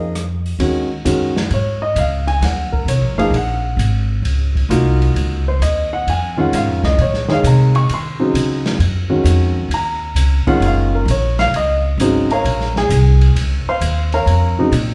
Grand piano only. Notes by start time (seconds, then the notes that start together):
Already playing: F3 A#3 D#4 G#4 D#5
0.60 D#3 G#3 C#4 F#4
1.05 D#3 G#3 C#4 F#4
1.54 C#5
1.82 D#5
1.98 F5
2.27 G#5
2.43 F#5
2.72 A#4
2.89 C#5
3.18 F3 A#3 D#4 G#4 F5
3.36 F#5
4.70 A#3 D#4 F4 F#4
5.48 C5
5.62 D#5
5.93 F#5
6.10 G#5
6.37 D#3 G#3 C#4 F4 F#5
6.55 F5
6.85 D#5
7.02 C#5
7.28 D#3 G#3 G#4 C#5 F5
7.47 A#5
7.76 C#6
7.94 C6
8.20 C#3 F#3 C4 D#4
9.10 D#3 G#3 C#4 F#4
9.74 A#5
10.47 D#3 G#3 C#4 F4 F#5
10.65 F5
10.95 A#4
11.11 C#5
11.39 F5
11.56 D#5
12.00 C#3 F#3 C4 D#4
12.32 A#4 C#5 F5 A#5
12.77 G#4 G#5
13.69 C5 F5 C6
14.14 A#4 C#5 F5 A#5
14.59 C#3 F#3 C4 D#4